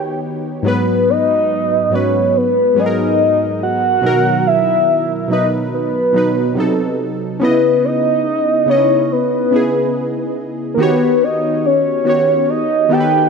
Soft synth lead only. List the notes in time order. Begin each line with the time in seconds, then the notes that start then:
Already playing: G5
0.67 B4
1.10 D#5
1.94 C#5
2.29 C#5
2.37 B4
2.79 D#5
3.63 F#5
4.47 E5
5.32 D#5
5.74 B4
7.43 B4
7.85 D#5
8.69 C#5
9.12 B4
10.74 A#4
10.82 B4
11.24 D#5
11.66 C#5
12.50 D#5
12.92 G5